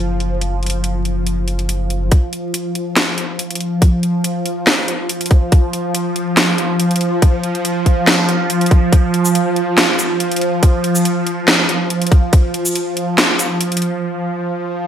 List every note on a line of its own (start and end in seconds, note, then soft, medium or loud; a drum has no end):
0.00 2.10 F#1 medium
0.00 2.10 F3 medium
0.20 closed hi-hat soft
0.41 closed hi-hat medium
0.63 closed hi-hat soft
0.66 closed hi-hat medium
0.70 closed hi-hat medium
0.84 closed hi-hat medium
1.05 closed hi-hat soft
1.27 closed hi-hat medium
1.48 closed hi-hat medium
1.59 closed hi-hat soft
1.69 closed hi-hat medium
1.90 closed hi-hat soft
2.11 14.87 F3 medium
2.11 kick loud
2.11 closed hi-hat medium
2.33 closed hi-hat soft
2.54 closed hi-hat medium
2.75 closed hi-hat medium
2.97 snare loud
2.97 closed hi-hat medium
3.18 closed hi-hat medium
3.39 closed hi-hat medium
3.51 closed hi-hat soft
3.55 closed hi-hat medium
3.60 closed hi-hat soft
3.82 kick loud
3.82 closed hi-hat medium
4.03 closed hi-hat medium
4.24 closed hi-hat medium
4.46 closed hi-hat medium
4.67 snare loud
4.67 closed hi-hat medium
4.88 closed hi-hat medium
5.09 closed hi-hat medium
5.21 closed hi-hat soft
5.26 closed hi-hat medium
5.31 kick loud
5.31 closed hi-hat soft
5.52 kick loud
5.52 closed hi-hat medium
5.73 closed hi-hat medium
5.94 closed hi-hat medium
6.16 closed hi-hat medium
6.37 snare loud
6.37 closed hi-hat medium
6.58 closed hi-hat medium
6.80 closed hi-hat medium
6.91 closed hi-hat soft
6.96 closed hi-hat medium
7.01 closed hi-hat soft
7.22 kick loud
7.22 closed hi-hat medium
7.43 closed hi-hat soft
7.55 closed hi-hat soft
7.65 closed hi-hat medium
7.86 kick medium
7.86 closed hi-hat soft
8.07 snare loud
8.07 closed hi-hat medium
8.29 closed hi-hat medium
8.50 closed hi-hat medium
8.61 closed hi-hat soft
8.66 closed hi-hat medium
8.71 kick loud
8.71 closed hi-hat soft
8.92 kick loud
8.92 closed hi-hat medium
9.14 closed hi-hat soft
9.25 shaker medium
9.35 closed hi-hat medium
9.56 closed hi-hat soft
9.78 snare loud
9.78 closed hi-hat medium
9.99 closed hi-hat medium
9.99 shaker medium
10.20 closed hi-hat medium
10.32 closed hi-hat soft
10.36 closed hi-hat medium
10.41 closed hi-hat soft
10.63 kick loud
10.63 closed hi-hat medium
10.84 closed hi-hat soft
10.95 shaker medium
11.05 closed hi-hat medium
11.27 closed hi-hat soft
11.48 snare loud
11.48 closed hi-hat medium
11.69 closed hi-hat medium
11.90 closed hi-hat medium
12.02 closed hi-hat soft
12.07 closed hi-hat medium
12.12 kick loud
12.12 closed hi-hat soft
12.33 kick loud
12.33 closed hi-hat medium
12.54 closed hi-hat medium
12.65 shaker medium
12.75 closed hi-hat medium
12.97 closed hi-hat medium
13.18 snare loud
13.18 closed hi-hat medium
13.39 closed hi-hat medium
13.39 shaker medium
13.61 closed hi-hat medium
13.72 closed hi-hat soft
13.77 closed hi-hat medium
13.82 closed hi-hat soft